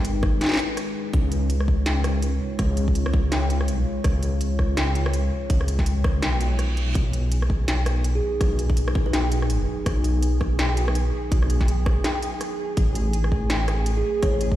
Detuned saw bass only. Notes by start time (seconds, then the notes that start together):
Already playing: G#1
1.14 C#2
1.86 C#2
2.59 C#2
3.31 C#2
4.04 C#2
4.77 C#2
5.50 C#2
6.23 B1
6.95 B1
7.68 B1
8.41 B1
9.13 B1
9.86 B1
10.59 B1
11.32 B1
12.77 A1
13.50 A1
14.23 A1